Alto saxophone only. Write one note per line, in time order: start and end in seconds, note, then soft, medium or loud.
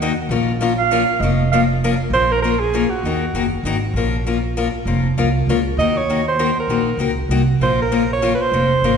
2.13 2.33 C5 loud
2.32 2.42 A#4 medium
2.42 2.61 A#4 medium
2.60 2.91 G#4 medium
2.90 3.51 F#4 medium
5.79 5.99 D#5 loud
5.97 6.27 C#5 loud
6.28 6.55 C5 medium
6.60 7.15 A#4 medium
7.63 7.78 C5 medium
7.82 8.09 A#4 medium
8.13 8.32 C#5 medium
8.35 8.43 B4 medium
8.41 8.97 C5 loud